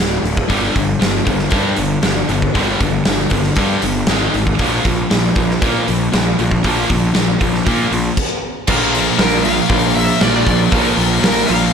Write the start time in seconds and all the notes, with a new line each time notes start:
Already playing: D1
0.23 D1, open hi-hat
0.37 kick
0.48 G1 G2 D3 G3, kick, open hi-hat
0.73 G1 G2 D3, kick, open hi-hat
0.99 G1 G2 D3, snare, open hi-hat
1.25 G1 G2 D3, kick, open hi-hat
1.39 snare
1.50 G2 D3 G3, kick, open hi-hat
1.76 G1 G2 D3, open hi-hat
2.02 G1 G2 D3, snare, open hi-hat
2.29 G1 G2 D3, open hi-hat
2.42 kick
2.54 G1 G2 D3 G3, kick, open hi-hat
2.80 G1 G2 D3, kick, open hi-hat
3.05 G1 G2 D3, snare, open hi-hat
3.30 G1 G2 D3, kick, open hi-hat
3.43 snare
3.56 G2 D3 G3, kick, open hi-hat
3.81 G1 G2 D3, open hi-hat
4.07 G#1 G#2 D#3 G#3, snare, open hi-hat
4.33 G#1 G#2 D#3, open hi-hat
4.47 kick
4.59 A#1 A#2 F3 A#3, kick, open hi-hat
4.85 A#1 A#2 F3, kick, open hi-hat
5.10 A#1 A#2 F3, snare, open hi-hat
5.36 A#1 A#2 F3, kick, open hi-hat
5.50 snare
5.61 A#2 F3 A#3, kick, open hi-hat
5.85 A#1 A#2 F3, open hi-hat
5.90 A#2
6.12 A#1 A#2 F3, snare, open hi-hat
6.39 A#1 A#2 F3, open hi-hat
6.51 kick
6.64 A#1 A#2 F3 A#3, kick, open hi-hat
6.90 A#1 A#2 F3, kick, open hi-hat
7.14 A#1 A#2 F3, snare, open hi-hat
7.41 A#1 A#2 F3, kick, open hi-hat
7.55 snare
7.67 A#2 F3 A#3, kick, open hi-hat
7.91 A#1 A#2 F3, open hi-hat
8.17 kick, crash
8.67 A#1 A#2 F3 A#3 F4 A#4, kick, crash
8.77 F4 A#4
8.84 F4 A#4
8.92 A#2 F3 F4 A#4, open hi-hat
9.00 F4 A#4
9.08 F4 A#4
9.16 A#1 A#2 F3 F4 A#4, snare, open hi-hat
9.23 F4 A#4
9.31 F4 A#4
9.38 A#3 F4 A#4
9.42 A#2 F3 F5, open hi-hat
9.47 F4 A#4
9.55 F4 A#4
9.63 F4 A#4
9.70 A#1 A#2 F3 F4 A#4, kick, open hi-hat
9.78 F4 A#4
9.86 F4 A#4
9.93 A#2 F3 F4 A#4 E5, open hi-hat
10.01 F4 A#4
10.09 F4 A#4
10.17 A#2 F4 A#4
10.21 A#1 F3 A#3 D5, snare, open hi-hat
10.25 F4 A#4
10.32 F4 A#4
10.42 F4 A#4
10.46 A#1 A#2 F3 F4 A#4, kick, open hi-hat
10.56 F4 A#4
10.64 F4 A#4
10.72 A#1 A#2 F3 A#3 F4 A#4, kick, open hi-hat
10.81 F4 A#4
10.88 F4 A#4
10.95 A#1 A#2 F3 F4 A#4
10.99 open hi-hat
11.03 F4 A#4
11.10 F4 A#4
11.19 A#1 F3 F4 A#4
11.24 A#2 F4 A#4, snare, open hi-hat
11.28 A#4
11.33 F4 A#4
11.40 F4 A#4
11.47 A#1 A#2 F3 A#3 F4 F5, open hi-hat
11.52 A#4
11.56 F4 A#4
11.63 F4
11.68 A#4